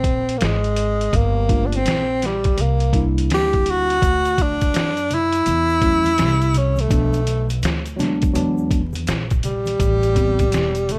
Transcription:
0.00 0.37 A#1 medium
0.00 0.39 C4 medium
0.00 kick medium
0.04 closed hi-hat medium
0.29 closed hi-hat soft
0.38 1.09 G#1 medium
0.38 0.46 A#3 medium
0.38 closed hi-hat medium
0.42 1.18 G#3 medium
0.42 snare loud
0.64 closed hi-hat soft
0.76 closed hi-hat medium
1.01 closed hi-hat soft
1.13 1.82 G1 loud
1.13 1.67 A#3 loud
1.13 kick loud
1.13 closed hi-hat medium
1.48 1.77 A3 medium
1.48 1.77 A#3 medium
1.48 1.77 D4 medium
1.48 1.78 F4 medium
1.48 kick medium
1.48 closed hi-hat medium
1.66 1.78 D4 medium
1.72 2.28 C4 medium
1.72 closed hi-hat medium
1.85 2.54 A#1 medium
1.85 snare loud
1.85 closed hi-hat medium
2.22 2.63 G3 medium
2.22 snare soft
2.22 closed hi-hat medium
2.44 kick medium
2.44 closed hi-hat soft
2.57 3.30 C2 medium
2.57 3.07 A#3 medium
2.57 closed hi-hat medium
2.80 closed hi-hat soft
2.93 3.96 G3 medium
2.93 3.97 A#3 medium
2.93 3.97 D4 medium
2.93 3.98 E4 medium
2.93 kick medium
2.93 closed hi-hat medium
3.18 closed hi-hat medium
3.30 3.98 D2 medium
3.30 3.72 G4 loud
3.30 snare loud
3.30 closed hi-hat medium
3.53 kick medium
3.53 closed hi-hat soft
3.66 closed hi-hat medium
3.70 4.44 F#4 loud
3.90 closed hi-hat soft
4.02 4.71 D2 loud
4.02 kick loud
4.02 closed hi-hat medium
4.02 shaker medium
4.25 closed hi-hat soft
4.25 shaker soft
4.38 kick medium
4.38 closed hi-hat medium
4.38 high conga soft
4.38 shaker soft
4.42 5.16 D4 loud
4.61 kick medium
4.61 closed hi-hat medium
4.61 shaker soft
4.74 5.43 F#2 medium
4.74 snare loud
4.74 closed hi-hat medium
4.74 shaker medium
4.97 closed hi-hat soft
4.97 shaker soft
5.11 6.59 E4 loud
5.11 closed hi-hat medium
5.11 low conga medium
5.11 shaker soft
5.32 closed hi-hat soft
5.32 shaker soft
5.46 6.20 E2 medium
5.46 closed hi-hat medium
5.46 low conga medium
5.46 shaker medium
5.69 shaker soft
5.81 6.10 F#3 medium
5.81 6.10 A3 medium
5.81 6.11 C#4 medium
5.81 6.11 E4 medium
5.81 kick medium
5.81 closed hi-hat medium
5.81 shaker soft
6.04 closed hi-hat medium
6.04 high conga medium
6.04 shaker soft
6.18 6.87 C2 medium
6.18 snare loud
6.18 closed hi-hat medium
6.18 shaker medium
6.41 closed hi-hat soft
6.41 shaker soft
6.54 6.82 C#4 loud
6.54 closed hi-hat medium
6.54 low conga medium
6.54 shaker soft
6.76 closed hi-hat soft
6.76 high conga medium
6.76 shaker soft
6.81 7.51 A3 medium
6.88 7.59 B1 loud
6.88 7.18 F3 medium
6.88 7.18 A3 medium
6.88 7.19 B3 medium
6.88 7.19 D4 medium
6.88 kick loud
6.88 closed hi-hat medium
6.88 shaker medium
7.13 closed hi-hat soft
7.13 shaker soft
7.27 closed hi-hat medium
7.27 high conga soft
7.27 shaker soft
7.50 closed hi-hat soft
7.50 shaker soft
7.63 8.32 D2 medium
7.63 snare loud
7.63 closed hi-hat medium
7.63 shaker medium
7.86 closed hi-hat soft
7.86 shaker soft
7.96 8.32 F#3 medium
7.96 8.33 G#3 medium
7.96 8.34 B3 medium
7.96 8.35 D4 medium
7.96 closed hi-hat medium
7.96 low conga medium
7.96 shaker soft
8.01 snare soft
8.22 kick medium
8.22 closed hi-hat soft
8.22 shaker medium
8.33 9.04 E2 loud
8.33 8.80 F#3 medium
8.33 8.80 G#3 medium
8.33 8.80 B3 medium
8.33 8.81 D4 medium
8.33 closed hi-hat medium
8.33 low conga medium
8.33 shaker medium
8.58 shaker soft
8.71 kick loud
8.71 closed hi-hat medium
8.71 shaker soft
8.93 closed hi-hat medium
8.93 high conga medium
8.93 shaker soft
9.07 9.76 A#1 medium
9.07 snare loud
9.07 closed hi-hat medium
9.07 shaker medium
9.30 kick medium
9.30 closed hi-hat soft
9.30 shaker soft
9.43 10.94 G3 loud
9.43 closed hi-hat medium
9.43 low conga medium
9.43 shaker soft
9.66 closed hi-hat soft
9.66 high conga medium
9.66 shaker soft
9.80 10.49 A1 loud
9.80 kick loud
9.80 closed hi-hat medium
9.80 shaker medium
10.03 closed hi-hat soft
10.03 shaker soft
10.14 10.43 E3 medium
10.14 10.44 G3 medium
10.14 10.44 B3 medium
10.14 10.45 C4 medium
10.14 kick medium
10.14 closed hi-hat medium
10.14 high conga soft
10.14 shaker soft
10.39 kick medium
10.39 closed hi-hat medium
10.39 shaker soft
10.52 10.99 E1 medium
10.52 snare loud
10.52 closed hi-hat medium
10.52 shaker medium
10.75 closed hi-hat soft
10.75 shaker soft
10.89 10.99 A3 medium
10.89 closed hi-hat medium
10.89 low conga medium
10.89 shaker soft

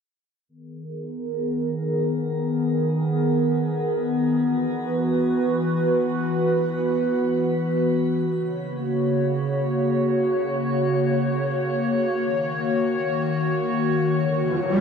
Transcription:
0.49 4.35 D#3 medium
0.49 8.25 B3 medium
0.49 4.35 G#4 medium
0.49 4.35 A#4 medium
4.39 8.25 E3 medium
4.39 8.25 F#4 medium
4.39 8.25 B4 medium
8.30 12.16 C#3 medium
8.30 14.81 A#3 medium
8.30 12.16 F#4 medium
8.30 14.81 C#5 medium
12.20 14.81 D#3 medium
12.20 14.81 F#4 medium
14.15 riser medium

